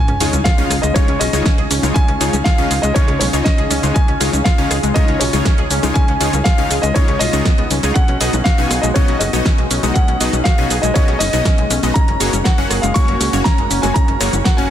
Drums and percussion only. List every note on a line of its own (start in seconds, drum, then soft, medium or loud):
0.08 closed hi-hat soft
0.20 open hi-hat loud
0.20 cowbell medium
0.20 cabasa medium
0.33 closed hi-hat soft
0.33 high conga loud
0.33 cabasa soft
0.45 kick loud
0.45 snare loud
0.45 closed hi-hat loud
0.45 cabasa soft
0.58 closed hi-hat soft
0.71 cross-stick medium
0.71 open hi-hat medium
0.71 cabasa medium
0.83 closed hi-hat soft
0.83 cabasa soft
0.96 kick loud
0.96 closed hi-hat loud
0.96 high conga medium
0.96 cabasa soft
1.08 closed hi-hat soft
1.21 open hi-hat loud
1.21 cowbell medium
1.21 cabasa medium
1.33 closed hi-hat soft
1.33 high conga medium
1.33 cabasa soft
1.46 kick loud
1.46 snare loud
1.46 closed hi-hat loud
1.46 cabasa soft
1.58 closed hi-hat soft
1.71 open hi-hat loud
1.71 cabasa medium
1.83 closed hi-hat soft
1.83 cowbell medium
1.83 high conga medium
1.83 cabasa soft
1.96 kick loud
1.96 closed hi-hat medium
1.96 cabasa soft
2.08 closed hi-hat soft
2.21 open hi-hat loud
2.21 cabasa medium
2.33 closed hi-hat soft
2.33 high conga loud
2.33 cabasa soft
2.46 kick loud
2.46 snare loud
2.46 closed hi-hat medium
2.46 cabasa soft
2.58 closed hi-hat soft
2.71 open hi-hat medium
2.71 cabasa medium
2.83 closed hi-hat soft
2.83 cabasa soft
2.96 kick loud
2.96 closed hi-hat medium
2.96 cabasa soft
3.08 closed hi-hat soft
3.08 cowbell medium
3.20 open hi-hat loud
3.20 high conga medium
3.20 cabasa medium
3.33 closed hi-hat soft
3.33 cabasa soft
3.46 kick loud
3.46 snare loud
3.46 closed hi-hat loud
3.46 cabasa soft
3.58 closed hi-hat soft
3.71 open hi-hat loud
3.71 high conga medium
3.71 cabasa medium
3.83 closed hi-hat soft
3.83 cabasa soft
3.96 kick loud
3.96 closed hi-hat medium
3.96 cabasa soft
4.08 closed hi-hat soft
4.21 open hi-hat loud
4.21 cowbell medium
4.21 cabasa medium
4.33 closed hi-hat soft
4.33 high conga loud
4.33 cabasa soft
4.45 kick loud
4.45 snare loud
4.45 closed hi-hat medium
4.45 cabasa soft
4.58 closed hi-hat soft
4.71 cross-stick medium
4.71 open hi-hat medium
4.71 cabasa medium
4.83 closed hi-hat soft
4.83 cabasa soft
4.96 kick loud
4.96 closed hi-hat medium
4.96 high conga medium
4.96 cabasa soft
5.08 closed hi-hat soft
5.20 open hi-hat loud
5.20 cowbell medium
5.20 cabasa medium
5.33 closed hi-hat soft
5.33 high conga medium
5.33 cabasa soft
5.45 kick loud
5.45 snare loud
5.45 closed hi-hat medium
5.45 cabasa soft
5.58 closed hi-hat soft
5.71 open hi-hat loud
5.71 cabasa medium
5.83 closed hi-hat soft
5.83 cowbell medium
5.83 high conga medium
5.83 cabasa soft
5.96 kick loud
5.96 closed hi-hat medium
5.96 cabasa soft
6.08 closed hi-hat soft
6.21 open hi-hat loud
6.21 cabasa medium
6.33 closed hi-hat soft
6.33 high conga medium
6.33 cabasa soft
6.45 kick loud
6.45 snare loud
6.45 closed hi-hat medium
6.45 cabasa soft
6.58 closed hi-hat soft
6.71 open hi-hat medium
6.71 cabasa medium
6.83 closed hi-hat soft
6.83 cabasa soft
6.96 kick loud
6.96 closed hi-hat medium
6.96 cabasa soft
7.08 closed hi-hat soft
7.08 cowbell medium
7.21 open hi-hat loud
7.21 high conga medium
7.21 cabasa medium
7.33 closed hi-hat soft
7.33 cabasa soft
7.45 kick loud
7.45 snare loud
7.45 closed hi-hat medium
7.45 cabasa soft
7.58 closed hi-hat soft
7.71 open hi-hat loud
7.71 high conga medium
7.71 cabasa medium
7.83 closed hi-hat soft
7.83 cabasa soft
7.96 kick loud
7.96 closed hi-hat medium
7.96 cabasa soft
8.08 closed hi-hat soft
8.21 open hi-hat loud
8.21 cowbell medium
8.21 cabasa medium
8.33 closed hi-hat soft
8.33 high conga medium
8.33 cabasa soft
8.45 kick loud
8.45 snare loud
8.45 closed hi-hat medium
8.45 cabasa soft
8.58 closed hi-hat soft
8.71 cross-stick medium
8.71 open hi-hat medium
8.71 cabasa medium
8.83 closed hi-hat soft
8.83 cabasa soft
8.96 kick loud
8.96 closed hi-hat medium
8.96 high conga medium
8.96 cabasa soft
9.08 closed hi-hat soft
9.21 open hi-hat loud
9.21 cowbell medium
9.21 cabasa medium
9.33 closed hi-hat soft
9.33 high conga medium
9.33 cabasa soft
9.46 kick loud
9.46 snare loud
9.46 closed hi-hat medium
9.46 cabasa soft
9.58 closed hi-hat soft
9.71 open hi-hat medium
9.71 cabasa medium
9.83 closed hi-hat soft
9.83 cowbell medium
9.83 high conga medium
9.83 cabasa soft
9.96 kick loud
9.96 closed hi-hat medium
9.96 cabasa soft
10.08 closed hi-hat soft
10.21 open hi-hat loud
10.21 cabasa medium
10.33 closed hi-hat soft
10.33 high conga loud
10.33 cabasa soft
10.45 kick loud
10.45 snare loud
10.45 closed hi-hat medium
10.45 cabasa soft
10.58 closed hi-hat soft
10.70 open hi-hat medium
10.70 cabasa medium
10.83 closed hi-hat soft
10.83 cabasa soft
10.96 kick loud
10.96 closed hi-hat medium
10.96 cabasa soft
11.08 closed hi-hat soft
11.08 cowbell medium
11.20 open hi-hat loud
11.20 high conga medium
11.20 cabasa medium
11.33 closed hi-hat soft
11.33 cabasa soft
11.45 kick loud
11.45 snare loud
11.45 closed hi-hat medium
11.45 cabasa soft
11.58 closed hi-hat soft
11.70 open hi-hat medium
11.70 high conga medium
11.70 cabasa medium
11.83 closed hi-hat soft
11.83 cabasa soft
11.96 kick loud
11.96 closed hi-hat medium
11.96 cabasa soft
12.08 closed hi-hat soft
12.20 open hi-hat loud
12.20 cowbell medium
12.20 cabasa medium
12.33 closed hi-hat soft
12.33 high conga medium
12.33 cabasa soft
12.45 kick loud
12.45 snare loud
12.45 closed hi-hat loud
12.45 cabasa soft
12.58 closed hi-hat soft
12.71 cross-stick medium
12.71 open hi-hat medium
12.71 cabasa medium
12.83 closed hi-hat soft
12.83 cabasa soft
12.96 kick loud
12.96 closed hi-hat medium
12.96 high conga medium
12.96 cabasa soft
13.08 closed hi-hat soft
13.21 open hi-hat loud
13.21 cowbell medium
13.21 cabasa medium
13.33 closed hi-hat soft
13.33 high conga medium
13.33 cabasa soft
13.45 kick loud
13.45 snare loud
13.45 closed hi-hat medium
13.45 cabasa soft
13.58 closed hi-hat soft
13.71 open hi-hat medium
13.71 cabasa medium
13.83 closed hi-hat soft
13.83 cowbell medium
13.83 high conga medium
13.83 cabasa soft
13.96 kick loud
13.96 closed hi-hat loud
13.96 cabasa soft
14.08 closed hi-hat soft
14.21 cross-stick medium
14.21 open hi-hat loud
14.21 cabasa medium
14.33 closed hi-hat soft
14.33 high conga medium
14.33 cabasa soft
14.45 kick loud
14.45 snare loud
14.45 closed hi-hat medium
14.45 cabasa soft
14.58 closed hi-hat soft